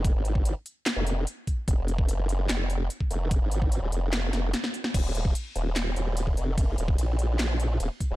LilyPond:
<<
  \new Staff \with { instrumentName = "Wobble bass" } { \clef bass \time 4/4 \key ees \minor \tempo 4 = 147 f,,16 aes,,4 r4 f,,8. r4 | f,,16 f,,8. ges,,4 f,,4 r8 f,,8~ | f,,16 aes,,4 ees,,16 f,,4 f,,8 r4 | ees,,8 ees,,8 r8 ees,,4 ees,,4 f,,8 |
ges,,8 ees,,8 bes,,2 ees,,16 r8 ees,,16 | }
  \new DrumStaff \with { instrumentName = "Drums" } \drummode { \time 4/4 <hh bd>8 hh16 bd16 hh8 hh8 <hc hh sn>8 hh8 hh8 <hh bd>8 | <hh bd>8 hh16 bd16 hh8 hh8 <hc hh sn>8 hh8 hh16 bd16 hh8 | <hh bd>8 hh16 bd16 hh8 hh8 <hc hh sn>8 <hh sn>8 <hh sn>16 sn16 hh16 sn16 | <cymc hh bd cymr>8 hh16 bd16 <hh cymr>8 hh8 <hc hh cymr sn>8 hh8 <hh cymr>16 bd16 hh8 |
<hh bd cymr>8 hh16 bd16 <hh cymr>8 hh8 <hc hh cymr sn>8 hh8 <hh cymr>8 <hh bd>8 | }
>>